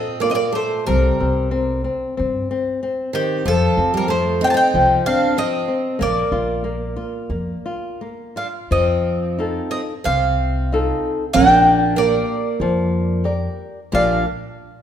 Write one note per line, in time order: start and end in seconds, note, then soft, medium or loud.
0.00 0.84 A#2 medium
0.00 0.20 C4 medium
0.00 0.23 A4 soft
0.00 0.21 D#5 medium
0.20 0.28 A#3 medium
0.20 0.55 F4 soft
0.20 0.30 D5 medium
0.30 0.36 C4 medium
0.30 0.35 D#5 medium
0.34 0.52 A#3 medium
0.34 0.55 D5 medium
0.52 0.84 A3 medium
0.52 0.87 A4 soft
0.52 0.86 C5 medium
0.86 1.09 C2 medium
0.86 1.81 G3 medium
0.86 1.19 C4 medium
0.86 1.81 A#4 medium
1.20 1.84 C2 medium
1.20 1.50 C4 soft
1.51 1.83 C4 medium
1.84 2.16 C4 medium
2.17 2.40 G2 medium
2.17 2.49 C4 medium
2.51 2.81 C4 soft
2.83 3.12 C4 medium
3.13 3.43 D#3 medium
3.13 3.44 C4 soft
3.13 3.47 G4 medium
3.46 3.66 F2 medium
3.46 3.90 F3 medium
3.46 4.10 F3 medium
3.46 3.91 A4 medium
3.77 4.40 F2 medium
3.77 4.08 C4 soft
3.94 4.08 G3 medium
3.94 4.10 A#4 medium
4.08 4.41 F3 medium
4.08 4.38 A3 medium
4.08 4.43 C5 medium
4.41 4.73 C4 medium
4.41 4.47 D#4 medium
4.41 4.50 G5 loud
4.47 4.54 F4 medium
4.47 4.56 A5 medium
4.54 5.01 D#4 medium
4.54 5.06 G5 medium
4.74 4.94 C2 medium
4.74 5.05 F3 medium
5.06 5.36 C4 medium
5.06 5.35 D4 medium
5.06 5.38 F5 loud
5.37 5.67 F3 medium
5.37 5.96 C4 medium
5.37 6.02 D#5 loud
5.68 5.99 C4 soft
5.99 6.21 A#1 medium
5.99 6.63 A#3 medium
5.99 7.97 A#3 medium
5.99 7.98 D5 medium
6.32 6.96 A#1 medium
6.32 6.63 F4 soft
6.64 6.95 A#3 soft
6.96 7.29 F4 soft
7.30 7.52 F2 medium
7.30 7.64 A#3 medium
7.66 8.00 F4 soft
8.01 8.36 A#3 soft
8.36 8.46 D4 medium
8.36 8.70 F4 soft
8.36 8.46 F5 medium
8.71 9.59 F2 medium
8.71 9.37 F3 medium
8.71 9.69 C4 medium
8.71 9.69 D#5 medium
9.38 9.92 D#4 soft
9.38 9.93 F4 soft
9.38 9.93 A4 soft
9.71 9.80 C4 medium
9.71 9.80 D#5 medium
10.04 10.90 C2 medium
10.04 10.70 C3 medium
10.04 11.31 C4 medium
10.04 11.33 F5 medium
10.72 11.23 D#4 soft
10.72 11.23 F4 soft
10.72 11.24 A4 medium
11.33 12.17 A#1 medium
11.33 11.96 A#3 medium
11.33 11.93 D4 loud
11.33 11.99 G5 loud
11.96 13.21 A#3 medium
11.96 12.48 G4 soft
11.96 12.48 A#4 soft
11.96 12.48 D5 medium
11.96 13.22 D5 medium
12.60 13.46 F2 medium
12.60 13.24 F3 medium
13.24 13.79 G4 soft
13.24 13.79 A#4 soft
13.24 13.79 D5 soft
13.92 14.24 A#1 medium
13.92 14.24 A#2 medium
13.92 14.24 F3 soft
13.92 14.24 A#3 soft
13.92 14.24 D4 medium
13.92 14.24 F4 soft
13.92 14.24 G4 soft
13.92 14.25 D5 medium
13.92 14.25 F5 medium